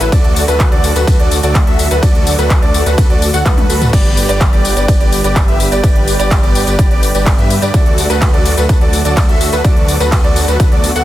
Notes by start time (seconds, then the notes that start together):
Already playing: F#4
0.00 A1 E4 A4 B4, closed hi-hat, tambourine
0.12 D3 F#3 A3 F#4 A4 D5, kick, closed hi-hat, ride, tambourine
0.24 closed hi-hat
0.36 open hi-hat, tambourine
0.48 D2 F#4 A4 B4, closed hi-hat, tambourine
0.60 kick, clap, closed hi-hat, ride, tambourine
0.72 D2 F#4 A4 D5, closed hi-hat
0.84 open hi-hat, tambourine
0.96 D2 F#4 A4 B4, closed hi-hat, tambourine
1.07 D2 F#4 A4 B4, kick, closed hi-hat, ride, tambourine
1.19 D2 F#4 A4 D5, closed hi-hat
1.31 open hi-hat, tambourine
1.43 D2 F#4 A4 D5, closed hi-hat, tambourine
1.55 kick, clap, closed hi-hat, ride, tambourine
1.67 D2 F#4 A4 E5, closed hi-hat
1.79 open hi-hat, tambourine
1.91 D2 F#4 A4 B4, closed hi-hat, tambourine
2.03 D2 F#4 A4 D5, kick, closed hi-hat, ride, tambourine
2.15 closed hi-hat
2.27 open hi-hat, tambourine
2.38 D2 F#4 A4 B4, closed hi-hat, tambourine
2.50 kick, clap, closed hi-hat, ride, tambourine
2.62 D2 F#4 A4 D5, closed hi-hat
2.74 open hi-hat, tambourine
2.86 D2 F#4 A4 B4, closed hi-hat, tambourine
2.98 D2 F#4 A4 B4, kick, closed hi-hat, ride, tambourine
3.10 D2 F#4 A4 D5, closed hi-hat
3.22 open hi-hat, tambourine
3.34 D2 F#4 A4 F#5, closed hi-hat, tambourine
3.45 D2 F#4 A4 B4, kick, clap, closed hi-hat, high tom, ride, tambourine
3.58 closed hi-hat, high tom
3.69 D2 F#4 A4 B4, open hi-hat, tambourine
3.82 closed hi-hat, mid tom, tambourine
3.93 G1 G3 B3 G4 B4 D5, kick, closed hi-hat, crash, ride, tambourine
4.05 closed hi-hat
4.17 open hi-hat, tambourine
4.29 G1 G4 B4 D5, closed hi-hat, tambourine
4.41 kick, clap, closed hi-hat, ride, tambourine
4.53 G1 G4 B4 D5, closed hi-hat
4.65 open hi-hat, tambourine
4.76 G1 G4 B4 D5, closed hi-hat, tambourine
4.88 G4 B4 D5, kick, closed hi-hat, ride, tambourine
5.00 G1 G4 B4 D5, closed hi-hat
5.12 open hi-hat, tambourine
5.24 G1 G4 B4 D5, closed hi-hat, tambourine
5.36 kick, clap, closed hi-hat, ride, tambourine
5.48 G1 G4 B4 E5, closed hi-hat
5.60 open hi-hat, tambourine
5.72 G1 G4 B4 D5, closed hi-hat, tambourine
5.84 G4 B4 D5, kick, closed hi-hat, ride, tambourine
5.96 closed hi-hat
6.08 open hi-hat, tambourine
6.19 G1 G4 B4 D5, closed hi-hat, tambourine
6.31 kick, clap, closed hi-hat, ride, tambourine
6.43 G1 G4 B4 D5, closed hi-hat
6.55 open hi-hat, tambourine
6.67 G1 G4 B4 D5, closed hi-hat, tambourine
6.79 G4 B4 D5, kick, closed hi-hat, ride, tambourine
6.91 G1 G4 B4 D5, closed hi-hat
7.03 open hi-hat, tambourine
7.14 G1 G4 B4 D5, closed hi-hat, tambourine
7.26 kick, clap, closed hi-hat, ride, tambourine
7.38 G2 G4 B4 E5, closed hi-hat
7.50 open hi-hat, tambourine
7.62 G2 G4 B4 D5, closed hi-hat, tambourine
7.74 D2 F#3 A3 F#4 A4 D5, kick, closed hi-hat, ride, tambourine
7.86 closed hi-hat
7.98 open hi-hat, tambourine
8.10 D2 F#4 A4 B4, closed hi-hat, tambourine
8.22 kick, clap, closed hi-hat, ride, tambourine
8.33 D2 F#4 A4 D5, closed hi-hat
8.45 open hi-hat, tambourine
8.57 D2 F#4 A4 B4, closed hi-hat, tambourine
8.69 F#4 A4 B4, kick, closed hi-hat, ride, tambourine
8.81 D2 F#4 A4 D5, closed hi-hat
8.93 open hi-hat, tambourine
9.05 D2 F#4 A4 D5, closed hi-hat, tambourine
9.17 kick, clap, closed hi-hat, ride, tambourine
9.29 D2 F#4 A4 E5, closed hi-hat
9.41 open hi-hat, tambourine
9.53 D2 F#4 A4 B4, closed hi-hat, tambourine
9.64 D2 B3 F#4 A4 D5, kick, closed hi-hat, ride, tambourine
9.77 closed hi-hat
9.88 open hi-hat, tambourine
10.00 D2 F#4 A4 B4, closed hi-hat, tambourine
10.12 kick, clap, closed hi-hat, ride, tambourine
10.24 D2 F#4 A4 D5, closed hi-hat
10.36 open hi-hat, tambourine
10.48 D2 F#4 A4 B4, closed hi-hat, tambourine
10.60 F#4 A4 B4, kick, closed hi-hat, ride, tambourine
10.72 D2 F#4 A4 D5, closed hi-hat
10.84 open hi-hat, tambourine
10.96 D2 F#4 A4 F#5, closed hi-hat, tambourine